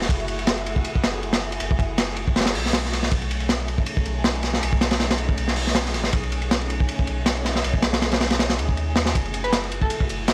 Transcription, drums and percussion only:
0.02 snare medium
0.09 kick loud
0.09 ride medium
0.20 ride soft
0.28 ride medium
0.39 ride soft
0.47 snare loud
0.47 ride medium
0.58 ride soft
0.66 ride medium
0.76 kick medium
0.85 ride medium
0.95 kick medium
1.04 snare loud
1.04 ride medium
1.23 ride medium
1.33 snare loud
1.33 ride medium
1.52 ride medium
1.60 ride medium
1.71 kick loud
1.79 kick loud
1.79 ride medium
1.98 snare loud
1.98 ride loud
2.17 ride medium
2.28 kick loud
2.36 snare medium
2.36 ride medium
2.41 snare medium
2.41 ride medium
2.46 snare loud
2.46 ride medium
2.55 open hi-hat medium
2.66 snare medium
2.73 snare loud
2.73 ride medium
2.85 snare soft
2.93 snare soft
2.93 ride medium
3.03 snare medium
3.11 kick loud
3.11 ride medium
3.22 ride soft
3.31 ride medium
3.40 ride soft
3.49 snare loud
3.49 ride medium
3.60 ride soft
3.68 ride medium
3.78 kick medium
3.86 ride medium
3.97 kick medium
4.06 ride medium
4.24 snare loud
4.24 ride medium
4.35 ride soft
4.43 snare soft
4.43 ride medium
4.54 snare medium
4.63 ride medium
4.73 kick medium
4.81 snare loud
4.81 ride medium
4.91 snare loud
4.91 ride medium
5.00 snare loud
5.00 ride medium
5.11 snare loud
5.11 ride medium
5.18 ride medium
5.29 kick loud
5.38 ride medium
5.48 snare medium
5.56 open hi-hat medium
5.67 snare soft
5.75 snare loud
5.75 ride medium
5.85 snare soft
5.94 snare soft
5.94 ride medium
6.04 snare medium
6.13 kick loud
6.13 ride medium
6.23 ride soft
6.32 ride medium
6.42 ride soft
6.51 snare loud
6.51 ride medium
6.61 ride soft
6.70 ride medium
6.80 kick medium
6.88 ride medium
6.99 kick medium
7.07 ride medium
7.26 snare loud
7.26 ride medium
7.37 ride soft
7.45 snare soft
7.45 ride medium
7.55 snare medium
7.64 ride medium
7.74 kick medium
7.83 snare loud
7.83 ride medium
7.93 snare loud
7.93 ride medium
8.02 snare loud
8.02 ride medium
8.12 snare loud
8.12 ride medium
8.21 snare loud
8.21 ride medium
8.30 snare loud
8.30 ride medium
8.39 snare loud
8.39 ride medium
8.50 snare medium
8.50 ride medium
8.59 ride medium
8.69 kick medium
8.77 ride medium
8.96 snare loud
8.96 ride medium
9.06 snare loud
9.06 ride medium
9.15 kick loud
9.15 closed hi-hat medium
9.15 ride medium
9.25 ride soft
9.34 closed hi-hat medium
9.34 ride medium
9.44 ride soft
9.53 snare loud
9.53 closed hi-hat medium
9.53 ride loud
9.63 snare soft
9.63 ride soft
9.72 closed hi-hat medium
9.72 ride medium
9.82 kick loud
9.90 closed hi-hat medium
9.90 ride medium
10.00 kick medium
10.09 closed hi-hat medium
10.09 ride medium
10.28 snare loud
10.28 closed hi-hat medium
10.28 ride medium

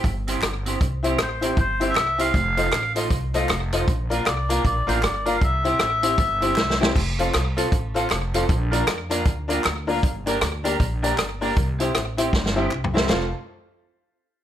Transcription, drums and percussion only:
0.04 kick loud
0.04 closed hi-hat medium
0.28 closed hi-hat medium
0.42 cross-stick loud
0.42 clap loud
0.42 closed hi-hat medium
0.66 closed hi-hat medium
0.81 kick loud
0.81 closed hi-hat medium
1.04 closed hi-hat medium
1.19 cross-stick loud
1.19 clap loud
1.19 closed hi-hat medium
1.42 closed hi-hat loud
1.57 kick loud
1.57 closed hi-hat medium
1.81 closed hi-hat medium
1.95 cross-stick loud
1.95 clap loud
1.95 closed hi-hat medium
2.19 closed hi-hat medium
2.34 kick loud
2.34 closed hi-hat medium
2.57 closed hi-hat medium
2.72 cross-stick loud
2.72 clap loud
2.72 closed hi-hat medium
2.96 closed hi-hat loud
3.10 kick loud
3.10 closed hi-hat medium
3.34 closed hi-hat medium
3.49 cross-stick loud
3.49 clap loud
3.49 closed hi-hat medium
3.73 closed hi-hat medium
3.88 kick loud
3.88 closed hi-hat medium
4.11 closed hi-hat medium
4.26 cross-stick loud
4.26 clap loud
4.26 closed hi-hat medium
4.50 closed hi-hat loud
4.65 kick loud
4.65 closed hi-hat medium
4.89 closed hi-hat medium
5.03 cross-stick loud
5.03 clap medium
5.03 closed hi-hat medium
5.26 closed hi-hat medium
5.41 kick loud
5.41 closed hi-hat medium
5.65 closed hi-hat medium
5.79 cross-stick loud
5.79 clap loud
5.79 closed hi-hat medium
6.03 closed hi-hat loud
6.18 kick loud
6.18 closed hi-hat medium
6.42 closed hi-hat medium
6.56 snare medium
6.56 clap loud
6.70 snare medium
6.83 snare loud
6.96 kick loud
6.96 crash loud
7.19 closed hi-hat medium
7.34 cross-stick loud
7.34 clap loud
7.34 closed hi-hat medium
7.58 closed hi-hat loud
7.72 kick loud
7.72 closed hi-hat medium
7.96 closed hi-hat medium
8.10 cross-stick loud
8.10 clap loud
8.10 closed hi-hat medium
8.34 closed hi-hat loud
8.49 kick loud
8.49 closed hi-hat medium
8.73 closed hi-hat medium
8.87 cross-stick loud
8.87 clap loud
8.87 closed hi-hat medium
9.11 closed hi-hat loud
9.25 kick loud
9.25 closed hi-hat loud
9.50 closed hi-hat loud
9.64 cross-stick loud
9.64 clap loud
9.64 closed hi-hat medium
9.89 open hi-hat medium
10.03 kick loud
10.03 closed hi-hat loud
10.27 closed hi-hat loud
10.41 cross-stick loud
10.41 clap loud
10.41 closed hi-hat medium
10.65 closed hi-hat loud
10.80 kick loud
10.80 closed hi-hat medium
11.04 closed hi-hat medium
11.18 cross-stick loud
11.18 clap loud
11.18 closed hi-hat medium
11.42 open hi-hat medium
11.56 kick loud
11.56 closed hi-hat loud
11.80 closed hi-hat medium
11.95 cross-stick loud
11.95 clap loud
11.95 closed hi-hat medium
12.18 closed hi-hat loud
12.33 kick loud
12.33 snare medium
12.46 snare medium
12.71 clap medium
12.84 floor tom medium
12.97 snare loud
13.10 snare loud
13.10 clap medium

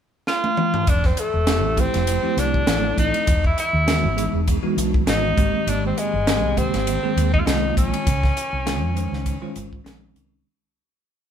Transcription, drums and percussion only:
0.27 snare medium
0.44 high tom medium
0.57 mid tom medium
0.74 floor tom medium
0.87 kick loud
0.87 hi-hat pedal medium
0.87 ride medium
1.04 kick medium
1.04 snare soft
1.17 hi-hat pedal medium
1.17 ride medium
1.47 snare medium
1.47 hi-hat pedal medium
1.47 ride medium
1.77 kick medium
1.77 hi-hat pedal medium
1.77 ride medium
1.94 snare soft
1.94 ride medium
2.07 hi-hat pedal medium
2.07 ride medium
2.38 snare soft
2.38 hi-hat pedal medium
2.38 ride medium
2.54 kick medium
2.67 snare medium
2.67 hi-hat pedal medium
2.67 ride medium
2.98 kick medium
2.98 hi-hat pedal medium
2.98 ride medium
3.14 ride medium
3.27 kick loud
3.27 hi-hat pedal medium
3.27 ride medium
3.44 kick medium
3.58 hi-hat pedal medium
3.58 ride medium
3.88 snare loud
3.88 hi-hat pedal medium
3.88 ride medium
4.18 hi-hat pedal medium
4.18 ride medium
4.48 kick medium
4.48 hi-hat pedal medium
4.48 ride medium
4.78 hi-hat pedal medium
4.78 ride medium
4.94 kick medium
5.07 snare medium
5.07 hi-hat pedal medium
5.07 ride medium
5.38 kick medium
5.38 hi-hat pedal medium
5.38 ride medium
5.68 hi-hat pedal medium
5.68 ride medium
5.98 hi-hat pedal medium
5.98 ride medium
6.27 snare medium
6.27 hi-hat pedal medium
6.27 ride medium
6.57 kick medium
6.57 hi-hat pedal medium
6.57 ride medium
6.74 snare soft
6.74 ride medium
6.87 hi-hat pedal medium
6.87 ride medium
7.17 hi-hat pedal medium
7.17 ride medium
7.34 kick medium
7.47 snare medium
7.47 hi-hat pedal medium
7.47 ride medium
7.77 kick medium
7.77 hi-hat pedal medium
7.77 ride medium
7.94 ride medium
8.07 kick loud
8.07 hi-hat pedal medium
8.07 ride medium
8.23 kick medium
8.23 snare soft
8.37 hi-hat pedal medium
8.37 ride medium
8.67 snare medium
8.67 hi-hat pedal medium
8.67 ride medium
8.97 hi-hat pedal medium
8.97 ride medium
9.13 snare soft
9.26 kick medium
9.26 hi-hat pedal medium
9.26 ride medium
9.56 hi-hat pedal medium
9.56 ride medium
9.73 kick medium
9.86 snare medium
9.86 hi-hat pedal medium
9.86 ride medium
10.16 hi-hat pedal medium
10.16 ride soft

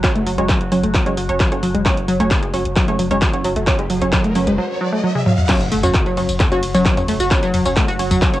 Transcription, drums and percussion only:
0.04 kick loud
0.04 clap loud
0.04 closed hi-hat medium
0.15 closed hi-hat medium
0.26 open hi-hat loud
0.38 closed hi-hat soft
0.49 kick loud
0.49 clap loud
0.49 closed hi-hat medium
0.61 closed hi-hat soft
0.72 open hi-hat loud
0.84 closed hi-hat medium
0.95 kick loud
0.95 clap loud
0.95 closed hi-hat medium
1.06 closed hi-hat medium
1.17 open hi-hat loud
1.29 closed hi-hat soft
1.40 kick loud
1.40 clap loud
1.40 closed hi-hat medium
1.52 closed hi-hat medium
1.63 open hi-hat loud
1.75 closed hi-hat medium
1.86 kick loud
1.86 clap loud
1.86 closed hi-hat medium
1.97 closed hi-hat medium
2.08 open hi-hat loud
2.20 closed hi-hat soft
2.31 kick loud
2.31 clap loud
2.31 closed hi-hat medium
2.43 closed hi-hat medium
2.54 open hi-hat loud
2.65 closed hi-hat medium
2.76 kick loud
2.76 clap loud
2.76 closed hi-hat medium
2.88 closed hi-hat soft
2.99 open hi-hat loud
3.11 closed hi-hat medium
3.22 kick loud
3.22 clap loud
3.22 closed hi-hat medium
3.34 closed hi-hat medium
3.45 open hi-hat loud
3.56 closed hi-hat medium
3.67 kick loud
3.67 clap loud
3.67 closed hi-hat medium
3.79 closed hi-hat medium
3.90 open hi-hat medium
4.02 closed hi-hat medium
4.13 kick loud
4.13 clap loud
4.13 closed hi-hat medium
4.24 closed hi-hat medium
4.35 open hi-hat loud
4.47 closed hi-hat medium
5.15 high tom medium
5.26 mid tom medium
5.38 mid tom medium
5.49 kick loud
5.49 clap loud
5.49 closed hi-hat loud
5.49 ride medium
5.49 tambourine medium
5.49 crash loud
5.61 closed hi-hat medium
5.61 tambourine soft
5.72 open hi-hat loud
5.72 ride medium
5.83 closed hi-hat medium
5.83 mid tom medium
5.83 tambourine medium
5.95 kick loud
5.95 clap loud
5.95 closed hi-hat loud
5.95 ride medium
5.95 tambourine soft
6.06 closed hi-hat medium
6.06 tambourine soft
6.17 open hi-hat loud
6.17 ride medium
6.29 closed hi-hat medium
6.29 tambourine medium
6.40 kick loud
6.40 clap loud
6.40 closed hi-hat medium
6.40 mid tom medium
6.40 ride medium
6.40 tambourine soft
6.52 closed hi-hat medium
6.52 tambourine soft
6.63 open hi-hat loud
6.63 ride medium
6.74 closed hi-hat medium
6.74 tambourine medium
6.85 kick loud
6.85 clap loud
6.85 closed hi-hat medium
6.85 ride medium
6.85 tambourine soft
6.97 closed hi-hat medium
6.97 mid tom medium
6.97 tambourine soft
7.08 open hi-hat loud
7.08 ride medium
7.20 closed hi-hat medium
7.20 tambourine medium
7.31 kick loud
7.31 clap loud
7.31 closed hi-hat loud
7.31 ride medium
7.31 tambourine medium
7.43 closed hi-hat medium
7.43 tambourine soft
7.54 mid tom medium
7.54 open hi-hat loud
7.54 ride medium
7.65 closed hi-hat medium
7.65 tambourine medium
7.76 kick loud
7.76 clap loud
7.76 closed hi-hat loud
7.76 ride medium
7.76 tambourine soft
7.88 closed hi-hat medium
7.88 tambourine soft
7.99 open hi-hat loud
7.99 ride medium
8.11 closed hi-hat medium
8.11 mid tom medium
8.11 tambourine medium
8.22 kick loud
8.22 clap loud
8.22 closed hi-hat loud
8.22 ride medium
8.22 tambourine medium
8.33 closed hi-hat medium
8.33 tambourine soft

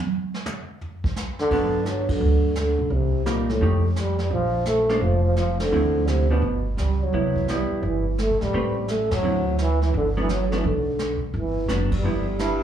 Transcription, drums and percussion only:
0.34 snare soft
0.46 hi-hat pedal medium
0.46 mid tom loud
0.81 floor tom soft
1.04 kick medium
1.16 snare soft
1.16 hi-hat pedal medium
1.39 snare soft
1.51 brush sweep soft
1.51 kick medium
1.51 crash medium
1.85 snare soft
1.85 hi-hat pedal medium
2.09 kick medium
2.09 ride medium
2.21 brush sweep soft
2.55 snare medium
2.55 hi-hat pedal soft
2.90 brush sweep soft
2.90 kick soft
3.26 snare medium
3.26 hi-hat pedal medium
3.49 snare soft
3.61 brush sweep soft
3.61 kick soft
3.96 snare medium
3.96 hi-hat pedal soft
4.19 snare soft
4.31 brush sweep soft
4.31 kick soft
4.65 snare medium
4.65 hi-hat pedal medium
4.89 snare soft
5.01 brush sweep soft
5.01 kick soft
5.36 snare medium
5.36 hi-hat pedal soft
5.60 snare medium
5.60 ride medium
5.72 brush sweep soft
6.07 snare medium
6.07 hi-hat pedal soft
6.42 brush sweep soft
6.42 kick soft
6.78 snare medium
6.78 hi-hat pedal medium
7.13 brush sweep soft
7.13 kick soft
7.36 kick medium
7.48 snare medium
7.48 hi-hat pedal soft
7.83 brush sweep soft
7.83 kick soft
8.18 snare medium
8.18 hi-hat pedal soft
8.41 snare soft
8.53 brush sweep soft
8.53 kick soft
8.88 snare medium
8.88 hi-hat pedal soft
9.11 snare medium
9.11 ride medium
9.23 brush sweep soft
9.58 snare medium
9.58 hi-hat pedal soft
9.82 snare soft
9.94 brush sweep soft
9.94 kick soft
10.29 snare medium
10.29 hi-hat pedal medium
10.52 snare soft
10.64 brush sweep soft
10.64 kick soft
10.99 snare medium
10.99 hi-hat pedal soft
11.34 brush sweep soft
11.34 kick soft
11.69 snare medium
11.69 hi-hat pedal medium
11.92 kick medium
11.92 ride medium
12.04 brush sweep soft
12.39 snare medium
12.39 hi-hat pedal medium

